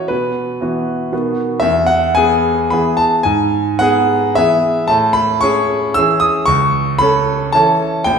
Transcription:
grand piano
0.08 B2 B4
0.61 E3 B3 F#4
1.12 B2 D#3 B3 F#4
1.60 E2 E5
1.86 F#5
2.15 B3 G#4 G#5
2.70 E3 B3 G#4 B5
2.97 A5
3.23 G#2 G#5
3.79 B3 G#4 F#5
4.35 E3 B3 G#4 E5
4.88 A2 A5
5.13 B5
5.41 C#4 G#4 C#6
5.94 E3 C#4 G#4 E6
6.20 D#6
6.46 C#2 C#6
6.99 C#4 A4 B5
7.52 E3 C#4 A4 A5
8.04 A#1 G5

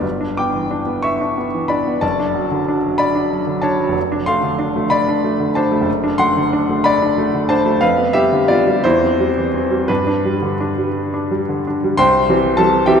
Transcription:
grand piano
0.01 G1
0.21 D4
0.37 B3 G5 D6
0.55 E3
0.71 D4
0.86 B3
1.02 E5 C#6
1.21 D4
1.38 B3
1.54 E3
1.68 D4 D5 B5
1.87 B3
2.01 F#1 D5 A5
2.19 D4
2.35 F#3
2.51 D3
2.68 D4
2.84 F#3
2.98 D5 B5
3.15 D4
3.31 F#3
3.47 D3
3.62 D4 C#5 A5
3.80 F#3
3.89 F1
4.12 D4
4.26 A3 F5 C6
4.43 D3
4.59 D4
4.76 A3
4.90 D5 B5
5.08 D4
5.24 A3
5.40 D3
5.55 D4 C5 A5
5.72 A3
5.81 F#1
6.04 D4
6.18 A3 F#5 C6
6.37 D3
6.53 D4
6.69 A3
6.84 D5 B5
7.02 D4
7.18 A3
7.34 D3
7.49 D4 C5 A5
7.66 A3
7.81 F2 B4 F5
7.98 B3
8.13 G3 G4 E5
8.32 D3
8.48 B3 F4 D5
8.67 G3
8.84 E2 E4 C5
9.03 C4
9.20 G3
9.37 E3
9.54 C4
9.71 G3
9.88 G2 D4 B4
10.07 D4
10.25 G3
10.42 D3
10.60 D4
10.78 G3
11.14 D4
11.31 G3
11.49 D3
11.67 D4
11.84 G3
11.97 C2 C5 G5 C6
12.29 E3 G3 C4
12.57 E3 G3 C4 A4 A5
12.86 E3 G3 C4 G4 E5 G5

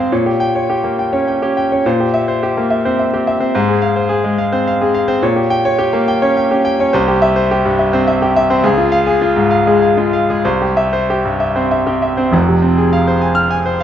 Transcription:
grand piano
Already playing: G#2 G#3 C4 G#4 C5 F5
0.12 A#2 C#5
0.26 G4
0.40 G5
0.55 C#5
0.70 G4
0.84 A#3
0.99 G5
1.13 C#4 C#5
1.27 G5
1.42 C#4 G4
1.57 G5
1.72 C#4 C#5
1.86 A#2 C5
2.00 G4
2.14 E5
2.28 C5
2.43 G4
2.57 A#3
2.70 E5
2.85 C4 C5
2.99 E5
3.13 C4 G4
3.27 E5
3.40 C4 C5
3.55 G#2 C5
3.68 G#4
3.82 F5
3.96 C5
4.09 G#4
4.24 G#3
4.38 F5
4.52 C4 C5
4.67 F5
4.81 C4 G#4
4.94 F5
5.08 C4 C5
5.23 A#2 C#5
5.36 G4
5.50 G5
5.65 C#5
5.79 G4
5.93 A#3
6.08 G5
6.22 C#4 C#5
6.37 G5
6.51 C#4 G4
6.65 G5
6.80 C#4 C#5
6.93 C2 C5
7.08 G4
7.22 E5
7.36 C5
7.51 G4
7.65 G2
7.79 E5
7.93 C4 C5
8.08 E5
8.22 C4 G4
8.36 E5
8.50 C4 C5
8.64 C#2 G#4
8.78 F4
8.92 F5
9.07 G#4
9.22 F4
9.36 G#2
9.51 F5
9.67 G#3 G#4
9.82 F5
9.97 G#3 F4
10.13 F5
10.30 G#3 G#4
10.45 C2 C5
10.62 G4
10.77 E5
10.93 C5
11.10 G4
11.25 G2
11.40 E5
11.56 C4 C5
11.71 E5
11.87 C4 G4
12.02 E5
12.17 C4 C5
12.32 F1 F2
12.48 C3
12.62 C4
12.77 G#4
12.93 F5
13.07 C5
13.21 G#5
13.35 F6
13.51 G#5
13.66 C5

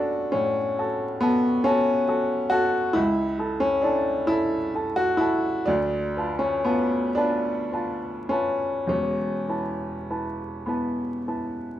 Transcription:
upright piano
Already playing: B3 C#4 D4 F#4 A4 A5
0.32 A2 C#4
0.79 F#4 A4 A5
1.21 B3 F#4 A4 A5
1.64 C#4 F#4 A4 A5
2.08 F#4 A4 A5
2.50 F#4 A4 A5
2.93 C#2 E4
3.39 E4 A4 A5
3.60 C#4
3.82 D4 E4 A4 A5
4.27 E4 A4 A5
4.75 E4 A4 A5
4.96 F#4
5.17 E4 A4 A5
5.66 D2 D4
6.17 F4 B4 A5
6.39 C#4
6.64 B3 F4 B4 A5
7.15 D4 F4 B4 A5
7.72 F4 B4 A5
8.29 C#4 F4 B4 A5
8.87 E1 E2 C#4
9.49 E4 B4 A5
10.11 E4 B4 A5
10.66 B3 E4 B4 A5
11.28 E4 B4 A5

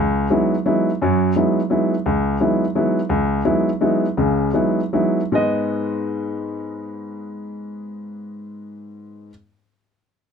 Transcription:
grand piano
Already playing: C#2
0.30 F#3 G#3 B3 D#4 E4
0.66 F#3 G#3 B3 D#4 E4
1.02 F#2 F#3
1.36 F#3 G#3 B3 D#4 E4
1.70 F#3 G#3 B3 D#4 E4
2.06 C#2
2.40 F#3 G#3 B3 D#4 E4
2.75 F#3 G#3 B3 D#4 E4
3.09 C#2
3.45 F#3 G#3 B3 D#4 E4
3.81 F#3 G#3 B3 D#4 E4
4.17 C#2 C#3
4.53 F#3 G#3 B3 D#4 E4
4.93 F#3 G#3 B3 D#4 E4
5.32 G#2 G#3 B3 D#4 D#5

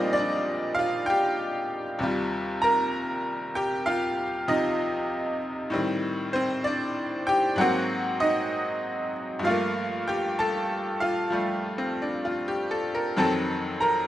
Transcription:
honky-tonk piano
Already playing: A#2 F3 G3 G#3 A#3 C4 D4 D#4 F4 G4 C5 D5 D#5
0.13 D5
0.17 D4
0.75 F5
0.79 F4
1.06 G4 G5
1.99 D#2 C3 G3
2.03 F4
2.62 A#4 A#5
3.55 G4 G5
3.86 F4 F5
4.48 C3 F3 D#4 D#5
5.70 A2 G3 C4
5.75 D#3
6.33 C4 C5
6.64 D4 D5
7.27 G4 G5
7.56 G#2 F#3 A#3 F#5
7.60 C4 F#4
8.20 D#4 D#5
9.39 G2 F3
9.45 A3 F4 F5
9.50 A#3
10.08 G4 G5
10.39 A4 A5
11.00 F4 F5
11.30 F3 G3 A3
11.78 C4
12.02 D4
12.25 F4
12.48 G4
12.71 A4
12.95 A#4
13.17 F2 D#3 F#3 C4 A4 A5
13.80 A#4 A#5

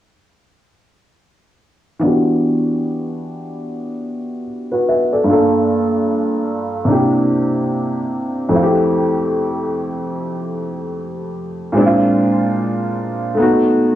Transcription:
upright piano
1.99 E3 B3 D4
2.05 F#4 G4
4.72 F#4 B4
4.89 B4 E5
5.12 A4 D5
5.24 G2 A3 D4
5.29 A#3 F4 A4
6.85 C3 A#3 D4
6.90 E4 G4
8.49 F2 A3 C4
8.54 E4 F4
8.63 G4
11.72 A#2 G#3 C4
11.77 D4 E4
11.86 F4
13.35 A3 B3
13.40 D#4 F#4

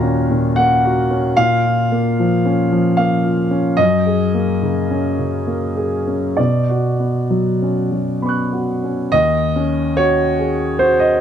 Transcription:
grand piano
Already playing: D#2 A#2 A#3 F#4 A#5
0.03 C#4
0.31 A#2
0.56 A#3 F#5
0.85 F#4
1.11 C#4
1.37 A#2 F5
1.65 F4
1.92 A#3
2.20 F3
2.45 C#4
2.72 F3
2.97 A#3 F5
3.25 F4
3.51 C#4
3.77 F#2 D#5
4.06 G#4
4.34 A#3
4.63 C#3
4.91 C#4
5.19 C#3
5.47 A#3
5.77 G#4
6.07 C#4
6.37 B2 D5
6.69 F#4
7.00 B3
7.30 F#3
7.62 C#4
7.92 F#3
8.22 B3 B5 C#6
8.29 F#6
8.52 F#4
8.84 C#4
9.12 D#2 D#5
9.56 C#4
9.97 F#4 C#5
10.39 G#4
10.79 F#4 C5
10.99 D#5

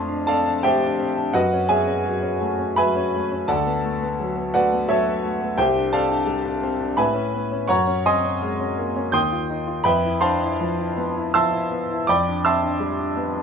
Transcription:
grand piano
Already playing: F2 A3 C4 D4 C5 F5 A5 C6
0.08 D4
0.27 C4 A4 D5 F5 A5
0.47 D4
0.63 A3 G4 C5 E5 G5
0.83 D4
0.99 C4
1.17 D4
1.34 F#2 F#4 B4 D#5 F#5
1.53 C#4
1.69 B3 G#4 C#5 E5 G#5
1.87 C#4
2.06 F#3
2.22 C#4
2.41 A3
2.59 C#4
2.76 F#3 B4 E5 G#5 B5
2.96 C#4
3.14 A3
3.32 C#4
3.48 D2 A4 D5 F#5 A5
3.66 B3
3.85 A3
4.02 B3
4.20 F#3
4.36 B3
4.54 A3 F#4 B4 D5 F#5
4.73 B3
4.89 F#3 A4 C#5 E5
5.07 B3
5.23 A3
5.42 B3
5.58 C2 G4 C5 E5 G5
5.75 D4
5.93 C4 A4 D5 F5 A5
6.11 D4
6.26 G3
6.45 D4
6.63 C4
6.80 D4
6.97 A2 B4 E5 G#5 B5
7.14 C#4
7.34 B3
7.52 C#4
7.68 F#2 C#5 F#5 A#5 C#6
7.87 C#4
8.06 C4 D#5 G#5 C6 D#6
8.25 C#4
8.42 G#3
8.60 C#4
8.79 A#3
8.96 C#4
9.12 D#2 G5 C6 D#6 G6
9.32 F4
9.50 D#4
9.67 F4
9.84 F2 B4 E5 G5 B5
10.04 E4
10.21 D4 C5 F5 A5 C6
10.42 E4
10.60 F3
10.79 E4
10.97 B3
11.16 E4
11.34 F3 E5 A5 C6 E6
11.52 E4
11.72 B3
11.91 E4
12.07 F2 D5 G5 B5 D6
12.28 D4
12.45 C4 E5 A5 C6 E6
12.63 D4
12.80 G3
12.98 D4
13.17 B3
13.34 D4

